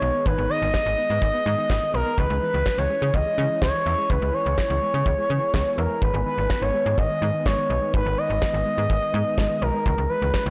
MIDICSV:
0, 0, Header, 1, 6, 480
1, 0, Start_track
1, 0, Key_signature, 5, "minor"
1, 0, Tempo, 480000
1, 259, Time_signature, 4, 2, 24, 8
1, 10501, End_track
2, 0, Start_track
2, 0, Title_t, "Analog synth lead"
2, 0, Program_c, 0, 81
2, 0, Note_on_c, 0, 73, 100
2, 258, Note_on_c, 0, 71, 100
2, 273, Note_off_c, 0, 73, 0
2, 492, Note_off_c, 0, 71, 0
2, 498, Note_on_c, 0, 75, 118
2, 1898, Note_off_c, 0, 75, 0
2, 1938, Note_on_c, 0, 70, 92
2, 2178, Note_on_c, 0, 71, 98
2, 2193, Note_off_c, 0, 70, 0
2, 2411, Note_off_c, 0, 71, 0
2, 2417, Note_on_c, 0, 71, 98
2, 2777, Note_on_c, 0, 73, 102
2, 2792, Note_off_c, 0, 71, 0
2, 3136, Note_on_c, 0, 75, 109
2, 3151, Note_off_c, 0, 73, 0
2, 3610, Note_off_c, 0, 75, 0
2, 3616, Note_on_c, 0, 73, 100
2, 4095, Note_on_c, 0, 71, 100
2, 4110, Note_off_c, 0, 73, 0
2, 4337, Note_on_c, 0, 73, 109
2, 4352, Note_off_c, 0, 71, 0
2, 5776, Note_on_c, 0, 70, 91
2, 5791, Note_off_c, 0, 73, 0
2, 6017, Note_on_c, 0, 71, 99
2, 6032, Note_off_c, 0, 70, 0
2, 6250, Note_off_c, 0, 71, 0
2, 6256, Note_on_c, 0, 71, 93
2, 6615, Note_on_c, 0, 73, 100
2, 6630, Note_off_c, 0, 71, 0
2, 6975, Note_on_c, 0, 75, 105
2, 6990, Note_off_c, 0, 73, 0
2, 7456, Note_on_c, 0, 73, 93
2, 7471, Note_off_c, 0, 75, 0
2, 7932, Note_off_c, 0, 73, 0
2, 7938, Note_on_c, 0, 71, 96
2, 8178, Note_on_c, 0, 75, 111
2, 8193, Note_off_c, 0, 71, 0
2, 9617, Note_on_c, 0, 70, 93
2, 9632, Note_off_c, 0, 75, 0
2, 10090, Note_off_c, 0, 70, 0
2, 10096, Note_on_c, 0, 71, 83
2, 10321, Note_off_c, 0, 71, 0
2, 10337, Note_on_c, 0, 71, 88
2, 10446, Note_off_c, 0, 71, 0
2, 10501, End_track
3, 0, Start_track
3, 0, Title_t, "String machine"
3, 0, Program_c, 1, 50
3, 0, Note_on_c, 1, 51, 80
3, 0, Note_on_c, 1, 56, 74
3, 0, Note_on_c, 1, 59, 72
3, 0, Note_on_c, 1, 68, 89
3, 2140, Note_off_c, 1, 51, 0
3, 2141, Note_off_c, 1, 59, 0
3, 2179, Note_on_c, 1, 52, 81
3, 2179, Note_on_c, 1, 61, 76
3, 4080, Note_off_c, 1, 61, 0
3, 4100, Note_on_c, 1, 59, 74
3, 5979, Note_off_c, 1, 56, 0
3, 5980, Note_off_c, 1, 52, 0
3, 6019, Note_on_c, 1, 56, 76
3, 6020, Note_on_c, 1, 51, 84
3, 9819, Note_off_c, 1, 59, 0
3, 9819, Note_off_c, 1, 68, 0
3, 9821, Note_off_c, 1, 51, 0
3, 9859, Note_on_c, 1, 68, 91
3, 9860, Note_on_c, 1, 52, 80
3, 9860, Note_on_c, 1, 61, 76
3, 10501, Note_off_c, 1, 52, 0
3, 10501, Note_off_c, 1, 56, 0
3, 10501, Note_off_c, 1, 61, 0
3, 10501, Note_off_c, 1, 68, 0
3, 10501, End_track
4, 0, Start_track
4, 0, Title_t, "Synth arpeggio sound"
4, 0, Program_c, 2, 84
4, 19, Note_on_c, 2, 75, 85
4, 97, Note_off_c, 2, 75, 0
4, 139, Note_on_c, 2, 59, 74
4, 217, Note_off_c, 2, 59, 0
4, 258, Note_on_c, 2, 51, 87
4, 336, Note_off_c, 2, 51, 0
4, 378, Note_on_c, 2, 59, 70
4, 456, Note_off_c, 2, 59, 0
4, 498, Note_on_c, 2, 51, 75
4, 576, Note_off_c, 2, 51, 0
4, 619, Note_on_c, 2, 51, 70
4, 697, Note_off_c, 2, 51, 0
4, 859, Note_on_c, 2, 51, 69
4, 937, Note_off_c, 2, 51, 0
4, 979, Note_on_c, 2, 59, 76
4, 1057, Note_off_c, 2, 59, 0
4, 1099, Note_on_c, 2, 71, 81
4, 1177, Note_off_c, 2, 71, 0
4, 1219, Note_on_c, 2, 51, 91
4, 1297, Note_off_c, 2, 51, 0
4, 1340, Note_on_c, 2, 59, 72
4, 1418, Note_off_c, 2, 59, 0
4, 1460, Note_on_c, 2, 51, 75
4, 1537, Note_off_c, 2, 51, 0
4, 1579, Note_on_c, 2, 51, 69
4, 1657, Note_off_c, 2, 51, 0
4, 1699, Note_on_c, 2, 59, 88
4, 1777, Note_off_c, 2, 59, 0
4, 1819, Note_on_c, 2, 51, 72
4, 1897, Note_off_c, 2, 51, 0
4, 1939, Note_on_c, 2, 75, 86
4, 2017, Note_off_c, 2, 75, 0
4, 2060, Note_on_c, 2, 59, 74
4, 2137, Note_off_c, 2, 59, 0
4, 2179, Note_on_c, 2, 52, 88
4, 2257, Note_off_c, 2, 52, 0
4, 2299, Note_on_c, 2, 56, 70
4, 2377, Note_off_c, 2, 56, 0
4, 2420, Note_on_c, 2, 52, 74
4, 2498, Note_off_c, 2, 52, 0
4, 2539, Note_on_c, 2, 52, 70
4, 2617, Note_off_c, 2, 52, 0
4, 2780, Note_on_c, 2, 52, 71
4, 2858, Note_off_c, 2, 52, 0
4, 2899, Note_on_c, 2, 56, 78
4, 2977, Note_off_c, 2, 56, 0
4, 3020, Note_on_c, 2, 68, 81
4, 3097, Note_off_c, 2, 68, 0
4, 3140, Note_on_c, 2, 52, 92
4, 3218, Note_off_c, 2, 52, 0
4, 3260, Note_on_c, 2, 56, 72
4, 3338, Note_off_c, 2, 56, 0
4, 3379, Note_on_c, 2, 52, 74
4, 3457, Note_off_c, 2, 52, 0
4, 3499, Note_on_c, 2, 52, 70
4, 3577, Note_off_c, 2, 52, 0
4, 3619, Note_on_c, 2, 56, 89
4, 3697, Note_off_c, 2, 56, 0
4, 3739, Note_on_c, 2, 52, 71
4, 3817, Note_off_c, 2, 52, 0
4, 3859, Note_on_c, 2, 76, 87
4, 3937, Note_off_c, 2, 76, 0
4, 3979, Note_on_c, 2, 56, 73
4, 4057, Note_off_c, 2, 56, 0
4, 4099, Note_on_c, 2, 52, 90
4, 4177, Note_off_c, 2, 52, 0
4, 4219, Note_on_c, 2, 56, 73
4, 4297, Note_off_c, 2, 56, 0
4, 4339, Note_on_c, 2, 52, 77
4, 4417, Note_off_c, 2, 52, 0
4, 4459, Note_on_c, 2, 52, 72
4, 4537, Note_off_c, 2, 52, 0
4, 4699, Note_on_c, 2, 52, 70
4, 4777, Note_off_c, 2, 52, 0
4, 4819, Note_on_c, 2, 56, 76
4, 4897, Note_off_c, 2, 56, 0
4, 4939, Note_on_c, 2, 68, 75
4, 5017, Note_off_c, 2, 68, 0
4, 5059, Note_on_c, 2, 52, 92
4, 5137, Note_off_c, 2, 52, 0
4, 5179, Note_on_c, 2, 56, 72
4, 5257, Note_off_c, 2, 56, 0
4, 5299, Note_on_c, 2, 52, 76
4, 5377, Note_off_c, 2, 52, 0
4, 5419, Note_on_c, 2, 52, 68
4, 5497, Note_off_c, 2, 52, 0
4, 5539, Note_on_c, 2, 56, 88
4, 5617, Note_off_c, 2, 56, 0
4, 5659, Note_on_c, 2, 52, 72
4, 5737, Note_off_c, 2, 52, 0
4, 5779, Note_on_c, 2, 76, 83
4, 5857, Note_off_c, 2, 76, 0
4, 5899, Note_on_c, 2, 56, 74
4, 5977, Note_off_c, 2, 56, 0
4, 6019, Note_on_c, 2, 51, 88
4, 6097, Note_off_c, 2, 51, 0
4, 6138, Note_on_c, 2, 56, 73
4, 6217, Note_off_c, 2, 56, 0
4, 6258, Note_on_c, 2, 51, 76
4, 6337, Note_off_c, 2, 51, 0
4, 6379, Note_on_c, 2, 51, 72
4, 6457, Note_off_c, 2, 51, 0
4, 6619, Note_on_c, 2, 51, 69
4, 6697, Note_off_c, 2, 51, 0
4, 6739, Note_on_c, 2, 56, 78
4, 6817, Note_off_c, 2, 56, 0
4, 6859, Note_on_c, 2, 68, 78
4, 6937, Note_off_c, 2, 68, 0
4, 6979, Note_on_c, 2, 51, 92
4, 7057, Note_off_c, 2, 51, 0
4, 7099, Note_on_c, 2, 56, 71
4, 7177, Note_off_c, 2, 56, 0
4, 7220, Note_on_c, 2, 51, 75
4, 7298, Note_off_c, 2, 51, 0
4, 7340, Note_on_c, 2, 51, 69
4, 7417, Note_off_c, 2, 51, 0
4, 7460, Note_on_c, 2, 56, 88
4, 7537, Note_off_c, 2, 56, 0
4, 7580, Note_on_c, 2, 51, 69
4, 7657, Note_off_c, 2, 51, 0
4, 7699, Note_on_c, 2, 75, 86
4, 7777, Note_off_c, 2, 75, 0
4, 7819, Note_on_c, 2, 56, 74
4, 7897, Note_off_c, 2, 56, 0
4, 7939, Note_on_c, 2, 51, 90
4, 8017, Note_off_c, 2, 51, 0
4, 8060, Note_on_c, 2, 56, 71
4, 8137, Note_off_c, 2, 56, 0
4, 8180, Note_on_c, 2, 51, 72
4, 8257, Note_off_c, 2, 51, 0
4, 8299, Note_on_c, 2, 51, 72
4, 8377, Note_off_c, 2, 51, 0
4, 8540, Note_on_c, 2, 51, 71
4, 8617, Note_off_c, 2, 51, 0
4, 8660, Note_on_c, 2, 56, 78
4, 8738, Note_off_c, 2, 56, 0
4, 8779, Note_on_c, 2, 68, 78
4, 8857, Note_off_c, 2, 68, 0
4, 8899, Note_on_c, 2, 51, 90
4, 8977, Note_off_c, 2, 51, 0
4, 9020, Note_on_c, 2, 56, 72
4, 9098, Note_off_c, 2, 56, 0
4, 9140, Note_on_c, 2, 51, 76
4, 9217, Note_off_c, 2, 51, 0
4, 9260, Note_on_c, 2, 51, 70
4, 9337, Note_off_c, 2, 51, 0
4, 9380, Note_on_c, 2, 56, 88
4, 9457, Note_off_c, 2, 56, 0
4, 9500, Note_on_c, 2, 51, 74
4, 9577, Note_off_c, 2, 51, 0
4, 9620, Note_on_c, 2, 75, 85
4, 9697, Note_off_c, 2, 75, 0
4, 9739, Note_on_c, 2, 56, 74
4, 9817, Note_off_c, 2, 56, 0
4, 9859, Note_on_c, 2, 52, 92
4, 9937, Note_off_c, 2, 52, 0
4, 9979, Note_on_c, 2, 56, 72
4, 10057, Note_off_c, 2, 56, 0
4, 10099, Note_on_c, 2, 52, 74
4, 10177, Note_off_c, 2, 52, 0
4, 10219, Note_on_c, 2, 52, 73
4, 10297, Note_off_c, 2, 52, 0
4, 10459, Note_on_c, 2, 52, 69
4, 10501, Note_off_c, 2, 52, 0
4, 10501, End_track
5, 0, Start_track
5, 0, Title_t, "FM bass"
5, 0, Program_c, 3, 39
5, 18, Note_on_c, 3, 35, 93
5, 108, Note_off_c, 3, 35, 0
5, 259, Note_on_c, 3, 32, 105
5, 349, Note_off_c, 3, 32, 0
5, 379, Note_on_c, 3, 32, 94
5, 469, Note_off_c, 3, 32, 0
5, 619, Note_on_c, 3, 32, 94
5, 709, Note_off_c, 3, 32, 0
5, 859, Note_on_c, 3, 32, 91
5, 949, Note_off_c, 3, 32, 0
5, 1100, Note_on_c, 3, 44, 95
5, 1189, Note_off_c, 3, 44, 0
5, 1219, Note_on_c, 3, 32, 101
5, 1309, Note_off_c, 3, 32, 0
5, 1460, Note_on_c, 3, 44, 110
5, 1549, Note_off_c, 3, 44, 0
5, 1698, Note_on_c, 3, 32, 91
5, 1788, Note_off_c, 3, 32, 0
5, 1940, Note_on_c, 3, 35, 88
5, 2029, Note_off_c, 3, 35, 0
5, 2179, Note_on_c, 3, 37, 110
5, 2269, Note_off_c, 3, 37, 0
5, 2299, Note_on_c, 3, 37, 90
5, 2389, Note_off_c, 3, 37, 0
5, 2540, Note_on_c, 3, 37, 86
5, 2629, Note_off_c, 3, 37, 0
5, 2780, Note_on_c, 3, 37, 93
5, 2869, Note_off_c, 3, 37, 0
5, 3019, Note_on_c, 3, 49, 100
5, 3109, Note_off_c, 3, 49, 0
5, 3139, Note_on_c, 3, 37, 101
5, 3229, Note_off_c, 3, 37, 0
5, 3380, Note_on_c, 3, 49, 105
5, 3469, Note_off_c, 3, 49, 0
5, 3619, Note_on_c, 3, 37, 87
5, 3709, Note_off_c, 3, 37, 0
5, 3859, Note_on_c, 3, 40, 89
5, 3949, Note_off_c, 3, 40, 0
5, 4099, Note_on_c, 3, 37, 109
5, 4189, Note_off_c, 3, 37, 0
5, 4219, Note_on_c, 3, 37, 81
5, 4309, Note_off_c, 3, 37, 0
5, 4460, Note_on_c, 3, 37, 89
5, 4549, Note_off_c, 3, 37, 0
5, 4699, Note_on_c, 3, 37, 91
5, 4789, Note_off_c, 3, 37, 0
5, 4939, Note_on_c, 3, 49, 92
5, 5029, Note_off_c, 3, 49, 0
5, 5059, Note_on_c, 3, 37, 102
5, 5149, Note_off_c, 3, 37, 0
5, 5299, Note_on_c, 3, 49, 98
5, 5389, Note_off_c, 3, 49, 0
5, 5538, Note_on_c, 3, 37, 92
5, 5628, Note_off_c, 3, 37, 0
5, 5779, Note_on_c, 3, 40, 92
5, 5869, Note_off_c, 3, 40, 0
5, 6019, Note_on_c, 3, 32, 108
5, 6109, Note_off_c, 3, 32, 0
5, 6138, Note_on_c, 3, 32, 102
5, 6229, Note_off_c, 3, 32, 0
5, 6378, Note_on_c, 3, 32, 90
5, 6468, Note_off_c, 3, 32, 0
5, 6618, Note_on_c, 3, 32, 93
5, 6708, Note_off_c, 3, 32, 0
5, 6858, Note_on_c, 3, 44, 90
5, 6948, Note_off_c, 3, 44, 0
5, 6979, Note_on_c, 3, 32, 103
5, 7069, Note_off_c, 3, 32, 0
5, 7218, Note_on_c, 3, 44, 103
5, 7308, Note_off_c, 3, 44, 0
5, 7458, Note_on_c, 3, 32, 96
5, 7549, Note_off_c, 3, 32, 0
5, 7698, Note_on_c, 3, 35, 93
5, 7788, Note_off_c, 3, 35, 0
5, 7939, Note_on_c, 3, 32, 108
5, 8029, Note_off_c, 3, 32, 0
5, 8057, Note_on_c, 3, 32, 93
5, 8148, Note_off_c, 3, 32, 0
5, 8298, Note_on_c, 3, 32, 94
5, 8388, Note_off_c, 3, 32, 0
5, 8538, Note_on_c, 3, 32, 90
5, 8628, Note_off_c, 3, 32, 0
5, 8778, Note_on_c, 3, 44, 94
5, 8868, Note_off_c, 3, 44, 0
5, 8899, Note_on_c, 3, 32, 101
5, 8989, Note_off_c, 3, 32, 0
5, 9138, Note_on_c, 3, 44, 110
5, 9228, Note_off_c, 3, 44, 0
5, 9378, Note_on_c, 3, 32, 89
5, 9468, Note_off_c, 3, 32, 0
5, 9618, Note_on_c, 3, 35, 92
5, 9708, Note_off_c, 3, 35, 0
5, 9859, Note_on_c, 3, 37, 110
5, 9949, Note_off_c, 3, 37, 0
5, 9979, Note_on_c, 3, 37, 90
5, 10069, Note_off_c, 3, 37, 0
5, 10219, Note_on_c, 3, 37, 89
5, 10309, Note_off_c, 3, 37, 0
5, 10459, Note_on_c, 3, 37, 96
5, 10501, Note_off_c, 3, 37, 0
5, 10501, End_track
6, 0, Start_track
6, 0, Title_t, "Drums"
6, 259, Note_on_c, 9, 36, 100
6, 359, Note_off_c, 9, 36, 0
6, 739, Note_on_c, 9, 38, 108
6, 741, Note_on_c, 9, 36, 103
6, 839, Note_off_c, 9, 38, 0
6, 841, Note_off_c, 9, 36, 0
6, 1219, Note_on_c, 9, 36, 104
6, 1319, Note_off_c, 9, 36, 0
6, 1698, Note_on_c, 9, 36, 105
6, 1701, Note_on_c, 9, 38, 120
6, 1798, Note_off_c, 9, 36, 0
6, 1801, Note_off_c, 9, 38, 0
6, 2179, Note_on_c, 9, 36, 106
6, 2279, Note_off_c, 9, 36, 0
6, 2658, Note_on_c, 9, 38, 104
6, 2661, Note_on_c, 9, 36, 100
6, 2758, Note_off_c, 9, 38, 0
6, 2761, Note_off_c, 9, 36, 0
6, 3139, Note_on_c, 9, 36, 100
6, 3239, Note_off_c, 9, 36, 0
6, 3618, Note_on_c, 9, 36, 106
6, 3620, Note_on_c, 9, 38, 118
6, 3718, Note_off_c, 9, 36, 0
6, 3720, Note_off_c, 9, 38, 0
6, 4099, Note_on_c, 9, 36, 104
6, 4199, Note_off_c, 9, 36, 0
6, 4578, Note_on_c, 9, 38, 108
6, 4581, Note_on_c, 9, 36, 103
6, 4678, Note_off_c, 9, 38, 0
6, 4681, Note_off_c, 9, 36, 0
6, 5059, Note_on_c, 9, 36, 105
6, 5159, Note_off_c, 9, 36, 0
6, 5538, Note_on_c, 9, 36, 101
6, 5541, Note_on_c, 9, 38, 118
6, 5638, Note_off_c, 9, 36, 0
6, 5641, Note_off_c, 9, 38, 0
6, 6019, Note_on_c, 9, 36, 104
6, 6119, Note_off_c, 9, 36, 0
6, 6498, Note_on_c, 9, 38, 106
6, 6501, Note_on_c, 9, 36, 101
6, 6598, Note_off_c, 9, 38, 0
6, 6601, Note_off_c, 9, 36, 0
6, 6979, Note_on_c, 9, 36, 103
6, 7079, Note_off_c, 9, 36, 0
6, 7458, Note_on_c, 9, 36, 101
6, 7461, Note_on_c, 9, 38, 122
6, 7558, Note_off_c, 9, 36, 0
6, 7561, Note_off_c, 9, 38, 0
6, 7939, Note_on_c, 9, 36, 106
6, 8039, Note_off_c, 9, 36, 0
6, 8418, Note_on_c, 9, 38, 110
6, 8421, Note_on_c, 9, 36, 101
6, 8518, Note_off_c, 9, 38, 0
6, 8521, Note_off_c, 9, 36, 0
6, 8899, Note_on_c, 9, 36, 100
6, 8999, Note_off_c, 9, 36, 0
6, 9378, Note_on_c, 9, 36, 103
6, 9380, Note_on_c, 9, 38, 119
6, 9478, Note_off_c, 9, 36, 0
6, 9480, Note_off_c, 9, 38, 0
6, 9859, Note_on_c, 9, 36, 104
6, 9959, Note_off_c, 9, 36, 0
6, 10338, Note_on_c, 9, 38, 109
6, 10341, Note_on_c, 9, 36, 98
6, 10438, Note_off_c, 9, 38, 0
6, 10441, Note_off_c, 9, 36, 0
6, 10501, End_track
0, 0, End_of_file